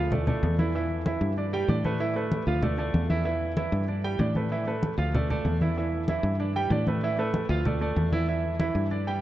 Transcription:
0.00 0.40 D2 medium
0.12 0.25 A3 medium
0.12 0.25 A4 medium
0.12 0.25 D5 medium
0.12 high conga soft
0.12 low conga medium
0.27 0.53 A3 medium
0.27 0.53 A4 medium
0.27 0.53 D5 medium
0.27 high conga soft
0.27 low conga medium
0.43 1.16 E2 medium
0.43 high conga medium
0.59 0.72 E3 medium
0.59 0.72 E4 medium
0.59 0.72 E5 medium
0.59 high conga medium
0.74 1.00 E3 medium
0.74 1.01 E4 medium
0.74 1.01 E5 medium
0.74 high conga soft
0.90 high conga soft
1.06 1.32 E3 medium
1.06 1.32 E4 medium
1.06 1.32 E5 medium
1.06 high conga loud
1.21 1.65 G2 loud
1.37 1.50 D4 medium
1.37 1.51 D5 medium
1.37 high conga soft
1.53 1.66 G3 loud
1.53 1.66 G4 medium
1.53 1.66 G5 medium
1.53 high conga soft
1.68 2.41 A2 medium
1.68 1.82 D4 medium
1.68 1.82 D5 medium
1.68 high conga medium
1.85 1.97 A3 medium
1.85 1.98 A4 medium
1.85 1.98 B4 medium
1.85 high conga medium
2.00 2.13 E3 medium
2.00 2.13 E4 medium
2.00 2.13 E5 medium
2.00 high conga soft
2.16 2.42 A3 medium
2.16 2.42 A4 medium
2.16 2.42 B4 medium
2.16 high conga soft
2.32 high conga loud
2.47 2.91 D2 medium
2.47 2.60 F3 medium
2.47 2.60 F4 medium
2.47 2.60 F5 medium
2.47 high conga soft
2.63 2.76 A3 medium
2.63 2.76 A4 medium
2.63 2.76 D5 medium
2.63 high conga soft
2.63 low conga medium
2.78 3.04 A3 medium
2.78 3.04 A4 medium
2.78 3.04 D5 medium
2.78 high conga soft
2.94 3.67 E2 loud
2.94 high conga medium
3.09 3.23 E3 medium
3.09 3.23 E4 medium
3.09 3.23 E5 medium
3.09 high conga medium
3.25 3.51 E3 medium
3.25 3.51 E4 medium
3.25 3.51 E5 medium
3.25 high conga soft
3.41 high conga soft
3.57 3.83 E3 medium
3.57 3.83 E4 medium
3.57 3.83 E5 medium
3.57 high conga medium
3.72 4.16 G2 loud
3.88 4.01 D4 medium
3.88 4.01 D5 medium
3.88 high conga soft
4.04 4.17 G3 medium
4.04 4.17 G4 medium
4.04 4.17 G5 loud
4.04 high conga soft
4.19 4.92 A2 loud
4.19 4.33 D4 medium
4.19 4.33 D5 medium
4.19 high conga medium
4.35 4.49 A3 medium
4.35 4.49 A4 medium
4.35 4.49 B4 medium
4.35 high conga medium
4.51 4.64 E3 medium
4.51 4.64 E4 medium
4.51 4.65 E5 medium
4.51 high conga soft
4.67 4.93 A3 medium
4.67 4.93 A4 medium
4.67 4.93 B4 medium
4.67 high conga soft
4.83 high conga loud
4.98 5.42 D2 medium
4.98 5.11 F3 medium
4.98 5.11 F4 medium
4.98 5.11 F5 medium
4.98 high conga soft
5.14 5.27 A3 medium
5.14 5.27 A4 medium
5.14 5.27 D5 medium
5.14 high conga soft
5.14 low conga medium
5.30 5.56 A3 medium
5.30 5.56 A4 medium
5.30 5.56 D5 medium
5.30 high conga soft
5.30 low conga medium
5.45 6.18 E2 medium
5.45 high conga medium
5.61 5.74 E3 medium
5.61 5.74 E4 medium
5.61 5.74 E5 medium
5.61 high conga medium
5.77 6.03 E3 medium
5.77 6.03 E4 medium
5.77 6.03 E5 medium
5.77 high conga soft
5.92 high conga soft
6.08 6.34 E3 medium
6.08 6.34 E4 medium
6.08 6.35 E5 medium
6.08 high conga loud
6.23 6.67 G2 loud
6.40 6.53 D4 medium
6.40 6.53 D5 medium
6.40 high conga soft
6.55 6.68 G3 medium
6.55 6.69 G4 medium
6.55 6.69 G5 medium
6.55 high conga soft
6.70 7.44 A2 loud
6.70 6.84 D4 medium
6.70 6.84 D5 medium
6.70 high conga medium
6.87 7.00 A3 medium
6.87 7.00 A4 medium
6.87 7.00 B4 medium
6.87 high conga medium
7.03 7.16 E3 medium
7.03 7.16 E4 medium
7.03 7.16 E5 medium
7.03 high conga soft
7.18 7.44 A3 medium
7.18 7.44 A4 medium
7.18 7.45 B4 medium
7.18 high conga soft
7.34 high conga loud
7.49 7.93 D2 loud
7.49 7.63 F3 medium
7.49 7.63 F4 medium
7.49 7.63 F5 medium
7.49 high conga soft
7.65 7.78 A3 medium
7.65 7.78 A4 medium
7.65 7.79 D5 medium
7.65 high conga soft
7.65 low conga medium
7.81 8.07 A3 medium
7.81 8.07 A4 medium
7.81 8.07 D5 medium
7.81 high conga soft
7.96 8.70 E2 medium
7.96 high conga medium
8.12 8.25 E3 medium
8.12 8.25 E4 medium
8.12 8.26 E5 medium
8.12 high conga medium
8.28 8.54 E3 medium
8.28 8.54 E4 medium
8.28 8.54 E5 medium
8.28 high conga soft
8.44 high conga soft
8.60 8.85 E3 medium
8.60 8.85 E4 medium
8.60 8.86 E5 medium
8.60 high conga medium
8.75 9.19 G2 medium
8.91 9.04 D4 medium
8.91 9.04 D5 medium
8.91 high conga soft
9.07 9.20 G3 medium
9.07 9.20 G4 loud
9.07 9.20 G5 medium
9.07 high conga soft

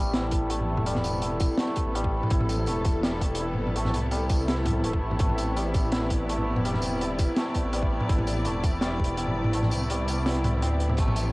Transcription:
0.00 0.77 A1 loud
0.00 11.32 C3 medium
0.00 0.85 G3 loud
0.00 0.50 A3 medium
0.00 11.32 B3 medium
0.00 11.32 E4 medium
0.14 1.22 E4 medium
0.14 snare loud
0.14 closed hi-hat medium
0.29 6.09 A4 medium
0.29 kick medium
0.29 closed hi-hat medium
0.50 1.58 A3 medium
0.50 closed hi-hat medium
0.60 mid tom soft
0.77 1.49 E1 medium
0.77 mid tom medium
0.86 1.94 G3 loud
0.86 closed hi-hat medium
0.95 snare soft
0.95 mid tom soft
1.04 closed hi-hat medium
1.04 tambourine medium
1.21 2.30 E4 medium
1.21 closed hi-hat medium
1.21 tambourine soft
1.40 kick loud
1.40 closed hi-hat medium
1.40 tambourine medium
1.58 2.67 A3 medium
1.58 snare loud
1.58 closed hi-hat medium
1.76 kick medium
1.76 closed hi-hat medium
1.86 2.21 A1 loud
1.95 3.02 G3 loud
1.95 closed hi-hat medium
2.04 kick medium
2.23 mid tom medium
2.30 2.69 A1 loud
2.30 3.39 E4 medium
2.30 kick loud
2.30 closed hi-hat medium
2.40 mid tom medium
2.49 closed hi-hat medium
2.49 tambourine medium
2.66 3.59 E1 loud
2.66 3.75 A3 medium
2.66 closed hi-hat medium
2.66 tambourine soft
2.85 kick loud
2.85 closed hi-hat medium
2.85 tambourine medium
3.03 4.11 G3 loud
3.03 snare loud
3.03 closed hi-hat medium
3.21 kick medium
3.21 closed hi-hat medium
3.35 closed hi-hat medium
3.40 4.47 E4 medium
3.53 mid tom soft
3.58 3.74 G1 loud
3.67 mid tom soft
3.76 3.95 A1 loud
3.76 4.84 A3 medium
3.76 closed hi-hat medium
3.85 snare soft
3.85 mid tom soft
3.94 4.65 C2 medium
3.94 closed hi-hat medium
4.11 5.55 G3 loud
4.11 closed hi-hat medium
4.11 tambourine soft
4.29 kick loud
4.29 closed hi-hat medium
4.29 tambourine medium
4.48 5.92 E4 medium
4.48 snare loud
4.48 closed hi-hat medium
4.66 4.84 C2 medium
4.66 kick medium
4.66 closed hi-hat medium
4.66 mid tom medium
4.84 5.01 E1 medium
4.84 5.20 A3 medium
4.84 closed hi-hat medium
4.93 kick medium
5.02 5.19 A1 medium
5.11 mid tom soft
5.19 6.55 A1 loud
5.19 6.28 A3 medium
5.19 kick loud
5.19 closed hi-hat medium
5.29 mid tom soft
5.38 closed hi-hat medium
5.38 tambourine medium
5.56 6.64 G3 loud
5.56 closed hi-hat medium
5.56 tambourine soft
5.74 kick loud
5.74 closed hi-hat medium
5.74 tambourine medium
5.92 7.00 E4 medium
5.92 snare loud
5.92 closed hi-hat medium
6.08 11.32 D5 medium
6.08 kick medium
6.08 closed hi-hat medium
6.29 7.37 A3 medium
6.29 closed hi-hat medium
6.38 mid tom soft
6.56 7.27 E1 medium
6.56 mid tom medium
6.65 7.72 G3 loud
6.65 closed hi-hat medium
6.74 snare soft
6.74 mid tom medium
6.82 closed hi-hat medium
6.82 tambourine medium
7.01 8.09 E4 medium
7.01 closed hi-hat medium
7.01 tambourine soft
7.19 kick loud
7.19 closed hi-hat medium
7.19 tambourine medium
7.36 8.45 A3 medium
7.36 snare loud
7.36 closed hi-hat medium
7.55 kick medium
7.55 closed hi-hat medium
7.65 7.99 A1 loud
7.73 8.81 G3 loud
7.73 closed hi-hat medium
7.83 kick medium
8.00 mid tom medium
8.09 8.47 A1 loud
8.09 9.17 E4 medium
8.09 kick loud
8.09 closed hi-hat medium
8.19 mid tom medium
8.27 closed hi-hat medium
8.27 tambourine medium
8.45 9.37 E1 loud
8.45 9.53 A3 medium
8.45 closed hi-hat medium
8.45 tambourine soft
8.64 kick loud
8.64 closed hi-hat medium
8.64 tambourine medium
8.81 9.89 G3 loud
8.81 snare loud
8.81 closed hi-hat medium
9.00 kick medium
9.04 closed hi-hat medium
9.17 10.26 E4 medium
9.17 closed hi-hat medium
9.27 mid tom soft
9.36 9.53 G1 loud
9.44 mid tom medium
9.53 9.73 A1 loud
9.53 10.98 A3 medium
9.53 closed hi-hat medium
9.62 snare soft
9.62 mid tom medium
9.71 10.44 C2 medium
9.71 closed hi-hat medium
9.71 tambourine medium
9.77 tambourine medium
9.83 tambourine soft
9.90 11.32 G3 loud
9.90 closed hi-hat medium
9.90 tambourine soft
10.08 closed hi-hat medium
10.08 tambourine medium
10.26 11.32 E4 medium
10.26 snare loud
10.26 closed hi-hat medium
10.28 closed hi-hat medium
10.31 closed hi-hat medium
10.33 closed hi-hat soft
10.44 10.64 C2 loud
10.44 closed hi-hat medium
10.44 mid tom medium
10.62 10.97 D2 medium
10.62 11.32 C4 loud
10.62 closed hi-hat medium
10.80 closed hi-hat medium
10.90 mid tom medium
10.97 11.32 A1 loud
10.97 11.32 A3 medium
10.97 kick loud
10.97 closed hi-hat medium
10.97 crash medium
11.08 mid tom medium
11.16 closed hi-hat medium
11.16 tambourine medium

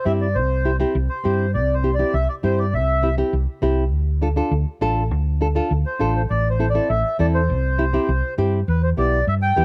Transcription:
0.05 0.37 G2 medium
0.05 0.26 C4 medium
0.05 0.26 E4 medium
0.05 0.27 G4 medium
0.05 0.12 E5 loud
0.21 0.36 D5 medium
0.35 0.83 C2 medium
0.35 0.77 C5 medium
0.65 0.70 C4 medium
0.65 0.70 E4 medium
0.65 0.70 G4 medium
0.80 0.95 C4 medium
0.80 0.96 E4 medium
0.80 0.96 G4 medium
0.95 1.07 C2 loud
1.09 1.51 C5 medium
1.24 1.56 G2 loud
1.24 1.45 C4 medium
1.24 1.45 E4 medium
1.24 1.46 G4 medium
1.54 2.02 C2 loud
1.54 1.75 D5 medium
1.74 1.94 C5 medium
1.83 1.89 C4 medium
1.83 1.89 E4 medium
1.83 1.89 G4 medium
1.94 2.15 D5 medium
1.99 2.15 C4 medium
1.99 2.15 E4 medium
1.99 2.15 G4 medium
2.14 2.26 C2 loud
2.14 2.28 E5 loud
2.29 2.35 D5 medium
2.43 2.75 G2 medium
2.43 2.64 C4 medium
2.43 2.64 E4 medium
2.43 2.65 G4 medium
2.43 2.59 C5 loud
2.59 2.74 D5 medium
2.73 3.21 C2 medium
2.73 3.15 E5 loud
3.03 3.08 C4 medium
3.03 3.08 E4 medium
3.03 3.08 G4 medium
3.18 3.33 C4 medium
3.18 3.34 E4 medium
3.18 3.34 G4 medium
3.33 3.45 C2 loud
3.62 3.92 C2 medium
3.62 3.83 C4 medium
3.62 3.83 E4 medium
3.62 3.84 G4 loud
3.92 4.40 D2 medium
4.22 4.27 D4 medium
4.22 4.27 F4 medium
4.22 4.28 A4 medium
4.36 4.52 D4 medium
4.36 4.52 F4 medium
4.36 4.53 A4 medium
4.51 4.63 D2 loud
4.81 5.11 A1 medium
4.81 5.02 D4 medium
4.81 5.03 F4 medium
4.81 5.03 A4 loud
5.11 5.59 D2 medium
5.41 5.46 D4 medium
5.41 5.46 F4 medium
5.41 5.47 A4 medium
5.55 5.71 D4 medium
5.55 5.71 F4 medium
5.55 5.72 A4 medium
5.71 5.83 D2 loud
5.86 6.13 C5 medium
5.99 6.24 A1 medium
5.99 6.21 D4 medium
5.99 6.21 F4 medium
5.99 6.21 A4 medium
6.16 6.22 C5 medium
6.30 6.78 A1 loud
6.30 6.49 D5 loud
6.50 6.68 C5 medium
6.59 6.65 C4 medium
6.59 6.65 E4 medium
6.59 6.65 A4 medium
6.70 6.88 D5 loud
6.74 6.90 C4 medium
6.74 6.90 E4 medium
6.74 6.90 A4 medium
6.89 7.02 A1 loud
6.89 7.17 E5 medium
7.19 7.51 E2 medium
7.19 7.40 C4 medium
7.19 7.40 E4 medium
7.19 7.40 A4 medium
7.19 7.26 D5 loud
7.34 8.34 C5 medium
7.50 7.97 C2 medium
7.78 7.84 C4 medium
7.78 7.84 E4 medium
7.78 7.84 G4 medium
7.93 8.09 C4 medium
7.93 8.09 E4 medium
7.93 8.09 G4 medium
8.09 8.20 C2 loud
8.38 8.62 G2 medium
8.38 8.59 C4 medium
8.38 8.59 E4 medium
8.38 8.59 G4 loud
8.68 8.92 E2 loud
8.68 8.82 B4 medium
8.83 8.90 C5 medium
8.97 9.21 B1 loud
8.97 9.18 B3 medium
8.97 9.18 E4 medium
8.97 9.19 G4 medium
8.97 9.25 D5 medium
9.27 9.51 G2 loud
9.27 9.35 E5 loud
9.42 9.65 G5 loud
9.56 9.65 E2 medium
9.56 9.62 B3 medium
9.56 9.62 E4 medium
9.56 9.62 G4 medium

